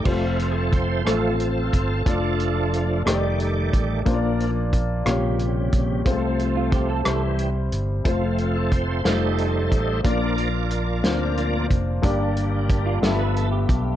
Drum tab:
CC |x-----|------|------|------|
HH |-xxxxx|xxxxxx|xxxxxx|xxxxxx|
SD |---r--|---r--|---r--|---r--|
BD |o-o--o|o----o|o-o--o|o-o---|

CC |------|------|------|
HH |xxxxxx|xxxxxx|xxxxxx|
SD |---o--|---o--|---o--|
BD |o-o--o|o----o|o-o--o|